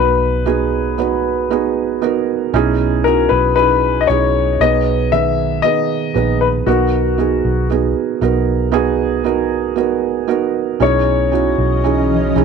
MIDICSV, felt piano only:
0, 0, Header, 1, 2, 480
1, 0, Start_track
1, 0, Key_signature, 5, "major"
1, 0, Tempo, 1034483
1, 1175, Time_signature, 4, 2, 24, 8
1, 5776, End_track
2, 0, Start_track
2, 0, Title_t, "Felt piano"
2, 0, Program_c, 0, 0
2, 0, Control_c, 0, 64, 127
2, 0, Note_on_c, 0, 59, 58
2, 0, Note_on_c, 0, 63, 54
2, 0, Note_on_c, 0, 66, 50
2, 0, Note_on_c, 0, 70, 60
2, 0, Note_on_c, 0, 71, 65
2, 0, Note_on_c, 0, 73, 66
2, 202, Note_off_c, 0, 59, 0
2, 204, Note_off_c, 0, 63, 0
2, 205, Note_off_c, 0, 66, 0
2, 207, Note_off_c, 0, 71, 0
2, 212, Note_on_c, 0, 59, 72
2, 216, Note_on_c, 0, 63, 62
2, 218, Note_on_c, 0, 66, 67
2, 220, Note_on_c, 0, 68, 77
2, 442, Note_off_c, 0, 59, 0
2, 443, Note_off_c, 0, 63, 0
2, 444, Note_off_c, 0, 66, 0
2, 446, Note_off_c, 0, 68, 0
2, 454, Note_on_c, 0, 59, 58
2, 455, Note_on_c, 0, 63, 54
2, 460, Note_on_c, 0, 66, 56
2, 463, Note_on_c, 0, 71, 67
2, 682, Note_off_c, 0, 59, 0
2, 683, Note_off_c, 0, 63, 0
2, 686, Note_off_c, 0, 66, 0
2, 687, Note_off_c, 0, 71, 0
2, 698, Note_on_c, 0, 59, 70
2, 700, Note_on_c, 0, 63, 64
2, 702, Note_on_c, 0, 66, 64
2, 707, Note_on_c, 0, 68, 69
2, 925, Note_off_c, 0, 59, 0
2, 926, Note_off_c, 0, 63, 0
2, 927, Note_off_c, 0, 66, 0
2, 929, Note_off_c, 0, 68, 0
2, 935, Note_on_c, 0, 59, 72
2, 938, Note_on_c, 0, 63, 67
2, 942, Note_on_c, 0, 66, 66
2, 946, Note_off_c, 0, 70, 0
2, 946, Note_on_c, 0, 70, 80
2, 1163, Note_off_c, 0, 59, 0
2, 1165, Note_off_c, 0, 63, 0
2, 1166, Note_off_c, 0, 66, 0
2, 1168, Note_off_c, 0, 70, 0
2, 1177, Note_on_c, 0, 61, 88
2, 1178, Note_on_c, 0, 63, 84
2, 1182, Control_c, 0, 64, 0
2, 1182, Note_on_c, 0, 47, 60
2, 1184, Note_on_c, 0, 64, 84
2, 1186, Note_off_c, 0, 73, 0
2, 1188, Note_on_c, 0, 68, 101
2, 1259, Control_c, 0, 64, 127
2, 1404, Note_off_c, 0, 61, 0
2, 1405, Note_off_c, 0, 63, 0
2, 1408, Note_off_c, 0, 64, 0
2, 1409, Note_off_c, 0, 68, 0
2, 1418, Note_on_c, 0, 61, 57
2, 1422, Note_on_c, 0, 63, 52
2, 1424, Note_on_c, 0, 64, 53
2, 1427, Note_on_c, 0, 66, 64
2, 1644, Note_off_c, 0, 61, 0
2, 1647, Note_off_c, 0, 63, 0
2, 1648, Note_off_c, 0, 64, 0
2, 1649, Note_off_c, 0, 66, 0
2, 1656, Note_on_c, 0, 61, 57
2, 1660, Note_on_c, 0, 63, 54
2, 1664, Note_on_c, 0, 64, 55
2, 1665, Note_on_c, 0, 68, 64
2, 1880, Note_off_c, 0, 47, 0
2, 1884, Note_off_c, 0, 61, 0
2, 1885, Note_off_c, 0, 63, 0
2, 1888, Note_off_c, 0, 64, 0
2, 1888, Note_off_c, 0, 68, 0
2, 1897, Note_on_c, 0, 61, 53
2, 1901, Note_on_c, 0, 63, 53
2, 1902, Note_on_c, 0, 64, 53
2, 1906, Note_on_c, 0, 68, 67
2, 2124, Note_off_c, 0, 61, 0
2, 2126, Note_off_c, 0, 63, 0
2, 2127, Note_off_c, 0, 64, 0
2, 2129, Note_off_c, 0, 68, 0
2, 2140, Note_on_c, 0, 59, 69
2, 2140, Note_on_c, 0, 63, 68
2, 2141, Control_c, 0, 64, 0
2, 2143, Note_on_c, 0, 47, 50
2, 2145, Note_on_c, 0, 68, 67
2, 2147, Note_on_c, 0, 71, 78
2, 2218, Control_c, 0, 64, 127
2, 2366, Note_off_c, 0, 59, 0
2, 2366, Note_off_c, 0, 63, 0
2, 2368, Note_off_c, 0, 68, 0
2, 2369, Note_off_c, 0, 71, 0
2, 2376, Note_on_c, 0, 59, 63
2, 2378, Note_on_c, 0, 51, 57
2, 2382, Note_on_c, 0, 68, 54
2, 2385, Note_on_c, 0, 71, 65
2, 2604, Note_off_c, 0, 59, 0
2, 2605, Note_off_c, 0, 51, 0
2, 2607, Note_off_c, 0, 68, 0
2, 2608, Note_off_c, 0, 71, 0
2, 2616, Note_on_c, 0, 59, 57
2, 2618, Note_on_c, 0, 63, 52
2, 2622, Note_on_c, 0, 68, 55
2, 2626, Note_on_c, 0, 71, 66
2, 2840, Note_off_c, 0, 47, 0
2, 2844, Note_off_c, 0, 59, 0
2, 2844, Note_off_c, 0, 63, 0
2, 2847, Note_off_c, 0, 68, 0
2, 2849, Note_off_c, 0, 71, 0
2, 2851, Note_on_c, 0, 59, 63
2, 2856, Note_on_c, 0, 63, 59
2, 2857, Note_on_c, 0, 68, 56
2, 2860, Note_on_c, 0, 71, 71
2, 3081, Note_off_c, 0, 59, 0
2, 3084, Note_off_c, 0, 63, 0
2, 3084, Note_off_c, 0, 68, 0
2, 3085, Note_off_c, 0, 71, 0
2, 3092, Note_on_c, 0, 59, 72
2, 3094, Note_on_c, 0, 63, 68
2, 3099, Note_on_c, 0, 66, 67
2, 3100, Note_on_c, 0, 70, 80
2, 3101, Control_c, 0, 64, 0
2, 3179, Control_c, 0, 64, 127
2, 3322, Note_off_c, 0, 59, 0
2, 3323, Note_off_c, 0, 63, 0
2, 3325, Note_off_c, 0, 66, 0
2, 3326, Note_off_c, 0, 70, 0
2, 3329, Note_on_c, 0, 59, 57
2, 3332, Note_on_c, 0, 63, 50
2, 3335, Note_on_c, 0, 66, 52
2, 3337, Note_on_c, 0, 68, 63
2, 3560, Note_off_c, 0, 59, 0
2, 3561, Note_off_c, 0, 63, 0
2, 3563, Note_off_c, 0, 66, 0
2, 3564, Note_off_c, 0, 68, 0
2, 3572, Note_on_c, 0, 59, 61
2, 3575, Note_on_c, 0, 63, 51
2, 3579, Note_on_c, 0, 66, 55
2, 3581, Note_on_c, 0, 68, 63
2, 3801, Note_off_c, 0, 59, 0
2, 3803, Note_off_c, 0, 63, 0
2, 3805, Note_off_c, 0, 66, 0
2, 3806, Note_off_c, 0, 68, 0
2, 3811, Note_on_c, 0, 59, 65
2, 3813, Note_on_c, 0, 63, 62
2, 3816, Note_on_c, 0, 66, 63
2, 3818, Note_on_c, 0, 70, 76
2, 4037, Note_off_c, 0, 59, 0
2, 4040, Note_off_c, 0, 63, 0
2, 4043, Note_off_c, 0, 66, 0
2, 4044, Note_on_c, 0, 59, 89
2, 4045, Note_off_c, 0, 70, 0
2, 4047, Note_on_c, 0, 63, 76
2, 4050, Note_on_c, 0, 66, 80
2, 4054, Note_on_c, 0, 68, 95
2, 4278, Note_off_c, 0, 59, 0
2, 4279, Note_off_c, 0, 63, 0
2, 4281, Note_off_c, 0, 66, 0
2, 4282, Note_off_c, 0, 68, 0
2, 4288, Note_on_c, 0, 59, 70
2, 4292, Note_on_c, 0, 63, 66
2, 4295, Note_on_c, 0, 66, 65
2, 4298, Note_on_c, 0, 70, 79
2, 4519, Note_off_c, 0, 59, 0
2, 4522, Note_off_c, 0, 63, 0
2, 4523, Note_off_c, 0, 66, 0
2, 4524, Note_off_c, 0, 70, 0
2, 4527, Note_on_c, 0, 59, 68
2, 4532, Note_on_c, 0, 63, 59
2, 4534, Note_on_c, 0, 66, 63
2, 4538, Note_on_c, 0, 70, 71
2, 4759, Note_off_c, 0, 59, 0
2, 4762, Note_off_c, 0, 63, 0
2, 4762, Note_off_c, 0, 66, 0
2, 4765, Note_off_c, 0, 70, 0
2, 4768, Note_on_c, 0, 59, 71
2, 4769, Note_on_c, 0, 63, 68
2, 4772, Note_on_c, 0, 66, 67
2, 4775, Note_on_c, 0, 70, 78
2, 4999, Note_off_c, 0, 59, 0
2, 5000, Note_off_c, 0, 63, 0
2, 5002, Note_off_c, 0, 66, 0
2, 5003, Note_off_c, 0, 70, 0
2, 5010, Note_on_c, 0, 61, 71
2, 5013, Note_on_c, 0, 47, 48
2, 5013, Note_on_c, 0, 63, 66
2, 5016, Note_on_c, 0, 64, 64
2, 5017, Note_on_c, 0, 68, 77
2, 5022, Control_c, 0, 64, 0
2, 5090, Control_c, 0, 64, 127
2, 5241, Note_off_c, 0, 61, 0
2, 5242, Note_off_c, 0, 63, 0
2, 5243, Note_off_c, 0, 64, 0
2, 5244, Note_off_c, 0, 68, 0
2, 5250, Note_on_c, 0, 61, 59
2, 5253, Note_on_c, 0, 63, 49
2, 5256, Note_on_c, 0, 64, 51
2, 5258, Note_on_c, 0, 66, 62
2, 5480, Note_off_c, 0, 61, 0
2, 5482, Note_off_c, 0, 63, 0
2, 5484, Note_off_c, 0, 64, 0
2, 5484, Note_off_c, 0, 66, 0
2, 5493, Note_on_c, 0, 61, 57
2, 5496, Note_on_c, 0, 63, 51
2, 5497, Note_on_c, 0, 64, 53
2, 5500, Note_on_c, 0, 68, 65
2, 5716, Note_off_c, 0, 47, 0
2, 5722, Note_off_c, 0, 61, 0
2, 5723, Note_off_c, 0, 63, 0
2, 5724, Note_off_c, 0, 64, 0
2, 5725, Note_off_c, 0, 68, 0
2, 5733, Note_on_c, 0, 61, 66
2, 5736, Note_on_c, 0, 63, 61
2, 5741, Note_on_c, 0, 64, 63
2, 5745, Note_on_c, 0, 68, 74
2, 5776, Note_off_c, 0, 61, 0
2, 5776, Note_off_c, 0, 63, 0
2, 5776, Note_off_c, 0, 64, 0
2, 5776, Note_off_c, 0, 68, 0
2, 5776, End_track
0, 0, End_of_file